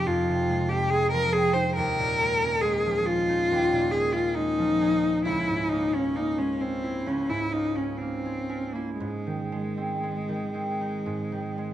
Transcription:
Already playing: C3 F3 G#3 C4 D#4
0.06 F2 F4
0.29 C3
0.49 G#3
0.69 C4 G4
0.90 G#3 G#4
1.12 F3 A#4
1.33 C4 G#4
1.53 D#4 C5
1.76 D#2 A#4
1.99 A#2
2.21 G#3
2.43 C#4
2.61 G#3 G#4
2.86 F3
3.06 C#4 F4
3.29 D#4
3.51 D#2
3.72 A#2
3.91 G#3 G#4
4.13 C#4 F4
4.35 G#3 D#4
4.59 F3
4.81 C#4
5.03 D#4
5.25 C#2 E4
5.48 G#2
5.69 A#3 D#4
5.93 C#4
6.16 A#3 D#4
6.38 G#3 C#4
6.61 C4 C#4
6.83 E4
7.06 C#2 C#4
7.30 G#2 E4
7.52 A#3 D#4
7.76 C#4
7.98 A#3 C4
8.25 G#3
8.49 C#4
8.73 A#3 E4
8.99 G#2 G#3
9.27 D#3
9.52 G#3
9.77 C4
10.03 G#3
10.29 D#3
10.54 C4
10.81 D#4
11.06 G#2
11.32 D#3
11.58 G#3

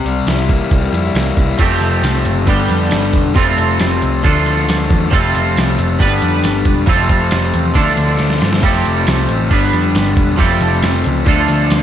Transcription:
Already playing: C3
0.04 C2 G3, closed hi-hat
0.27 C2 E4, snare, closed hi-hat, tambourine
0.49 A#3, kick, closed hi-hat
0.71 C2 G3, kick, closed hi-hat
0.93 F2 E4, closed hi-hat
1.14 C2 A#3, snare, closed hi-hat, tambourine
1.37 C2 E4, kick, closed hi-hat
1.59 F1 F2 C3 F3 A3 C4 G4, kick, closed hi-hat, crash
1.81 F1, closed hi-hat
2.03 C2, snare, closed hi-hat, tambourine
2.25 F#1, closed hi-hat
2.47 G1 G2 D3 G3 B3 D4 G4, kick, closed hi-hat
2.69 F2, closed hi-hat
2.91 G1, snare, closed hi-hat, tambourine
3.13 E1, kick, snare, closed hi-hat
3.35 F1 F2 C3 F3 G3 A3 C4 F4 A4, kick, closed hi-hat
3.58 F1, closed hi-hat
3.79 F1, snare, closed hi-hat, tambourine
4.02 C2, closed hi-hat
4.23 D2 D3 F3 A3 D4 F4 A4, kick, closed hi-hat
4.46 D2, closed hi-hat
4.69 D2, snare, closed hi-hat, tambourine
4.90 E2, kick, closed hi-hat
5.11 F1 F2 C3 F3 G3 A3 C4 F4 A4, kick, closed hi-hat
5.35 F1, closed hi-hat
5.57 C2, snare, closed hi-hat, tambourine
5.79 F1, closed hi-hat
5.99 G1 G2 D3 G3 B3 D4 B4, kick, closed hi-hat
6.22 F2, closed hi-hat
6.44 G1, snare, closed hi-hat, tambourine
6.65 E1, kick, closed hi-hat
6.87 F1 F2 C3 F3 G3 A3 C4 F4 A4, kick, closed hi-hat
7.09 F1, kick, closed hi-hat
7.31 F1, snare, closed hi-hat, tambourine
7.54 E2, closed hi-hat
7.75 D2 D3 F3 A3 D4 F4 A4, kick, closed hi-hat
7.97 D2, closed hi-hat
8.19 D2, snare, closed hi-hat
8.30 snare
8.41 G2, snare, closed hi-hat
8.53 snare
8.62 F1 F2 C3 F3 G3 A3 C4 G4 A4, kick, closed hi-hat
8.85 F1, closed hi-hat
9.07 C2, snare, closed hi-hat, tambourine
9.29 A1, closed hi-hat
9.51 G1 G2 D3 G3 B3 D4 B4, kick, closed hi-hat
9.73 F2, closed hi-hat
9.95 G1, snare, closed hi-hat, tambourine
10.17 E1, kick, closed hi-hat
10.37 F1 F2 C3 F3 G3 A3 C4 G4 A4, kick, closed hi-hat
10.61 F1, closed hi-hat
10.82 F1, snare, closed hi-hat, tambourine
11.04 C#2, closed hi-hat
11.25 D2 D3 F3 A3 D4 F4 A4, kick, closed hi-hat
11.48 D2, closed hi-hat
11.70 D2, snare, closed hi-hat, tambourine

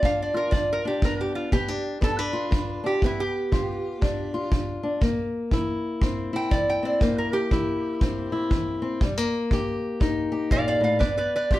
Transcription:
Already playing: B3 F4
0.03 G2 D4 F5, kick
0.22 D5
0.34 F4 A#4
0.51 D3 D5, kick
0.73 A#4
0.85 D4 G4
1.02 G2 B3 A#4, kick
1.21 G4
1.35 F4
1.52 D3 B3 G4, kick
1.68 D4
2.01 G2 B3 A4, kick
2.19 D4 B4
2.33 F4
2.51 D3, kick
2.84 D4 G4
3.02 G2 B3 E4, kick
3.20 G4
3.52 D3 F4, kick
4.01 G2 D4, kick
4.34 F4
4.51 D3, kick
4.83 D4
5.01 C3 A#3, kick
5.51 E3 E4, kick
6.01 G2 C4, kick
6.33 E4 G5
6.51 E3 D5, kick
6.69 G5
6.83 C4 D5
7.01 C3 A#3 C5, kick
7.18 A#4
7.33 G4
7.51 E3 E4, kick
8.01 G2 C4, kick
8.32 E4
8.50 E3, kick
8.82 C4
9.01 C3 G3, kick
9.18 A#3
9.51 D#3 G4, kick
10.00 G2 D#4, kick
10.32 G4
10.51 A#2 D5 F5, kick
10.68 D5 F5
10.81 A2 D5 F5
10.99 G2 B3 B4 D5, kick
11.18 B4 D5
11.36 B4 D5
11.51 D3 F4 G4, kick

